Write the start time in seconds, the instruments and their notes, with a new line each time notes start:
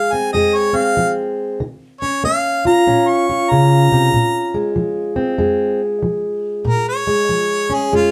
Already playing: steel-string acoustic guitar F3 G#3, harmonica F5
0.13 steel-string acoustic guitar C4, harmonica G#5
0.33 steel-string acoustic guitar F2 G#3, harmonica D#5
0.55 harmonica C#5
0.73 steel-string acoustic guitar C4, harmonica F5
0.97 steel-string acoustic guitar F3
1.60 steel-string acoustic guitar D#3
2.01 steel-string acoustic guitar C#4, harmonica C#5
2.24 steel-string acoustic guitar A#3, harmonica F5
2.65 steel-string acoustic guitar F4, harmonica A#5
2.87 steel-string acoustic guitar A#2 C#4
3.08 harmonica C#6
3.30 steel-string acoustic guitar F4
3.50 steel-string acoustic guitar C#3, harmonica A#5
3.92 steel-string acoustic guitar C3
4.14 steel-string acoustic guitar A#2
4.54 steel-string acoustic guitar G#3
4.76 steel-string acoustic guitar F3
5.16 steel-string acoustic guitar C4
5.38 steel-string acoustic guitar F2 G#3
6.03 steel-string acoustic guitar F3
6.65 steel-string acoustic guitar A#2, harmonica A#4
6.89 harmonica C#5
7.07 steel-string acoustic guitar G#3
7.29 steel-string acoustic guitar F3
7.70 steel-string acoustic guitar C#4
7.74 harmonica G#4
7.92 steel-string acoustic guitar F2 G#3, harmonica F4